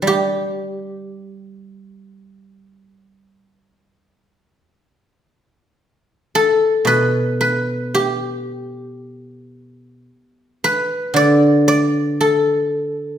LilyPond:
<<
  \new Staff \with { instrumentName = "Guzheng" } { \time 4/4 \tempo 4 = 55 g'2. r4 | r4. a'8 b'8 b'8 g'8. r16 | r4. b'8 d''8 d''8 a'8. r16 | }
  \new Staff \with { instrumentName = "Guzheng" } { \clef bass \time 4/4 <d g>2. r4 | r2 b,2~ | b,4 r4 d2 | }
>>